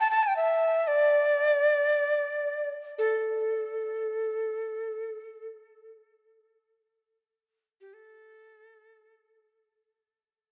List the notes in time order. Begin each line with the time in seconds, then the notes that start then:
0.00 A5
0.11 A5
0.23 G5
0.36 E5
0.87 D5
2.98 A4
7.81 G4
7.94 A4